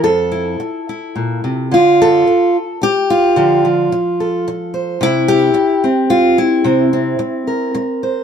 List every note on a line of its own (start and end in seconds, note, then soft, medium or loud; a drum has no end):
0.04 0.59 F2 medium
0.04 1.71 A4 medium
0.32 0.87 E4 soft
0.60 muted steel-string acoustic guitar stroke medium
0.89 1.69 E4 soft
1.16 1.43 A#2 medium
1.44 1.72 C3 medium
1.71 2.27 D3 medium
1.71 2.56 F4 medium
2.02 2.83 A4 loud
2.27 muted steel-string acoustic guitar stroke medium
2.82 3.65 G4 loud
2.82 muted steel-string acoustic guitar stroke medium
3.10 4.46 F4 medium
3.36 3.91 D3 medium
3.36 3.64 F3 soft
3.65 4.97 F3 soft
3.92 muted steel-string acoustic guitar stroke medium
4.20 4.98 A4 soft
4.48 muted steel-string acoustic guitar stroke medium
4.74 6.10 C5 soft
5.01 5.54 C3 medium
5.01 5.83 E4 loud
5.28 6.65 G4 loud
5.54 muted steel-string acoustic guitar stroke medium
5.84 6.65 C4 soft
6.10 6.37 F4 loud
6.10 muted steel-string acoustic guitar stroke medium
6.38 7.75 E4 medium
6.64 7.18 C3 medium
6.64 6.93 C4 soft
6.93 8.24 C4 soft
7.19 muted steel-string acoustic guitar stroke medium
7.47 8.24 A#4 soft
7.75 muted steel-string acoustic guitar stroke medium
8.03 8.24 C5 soft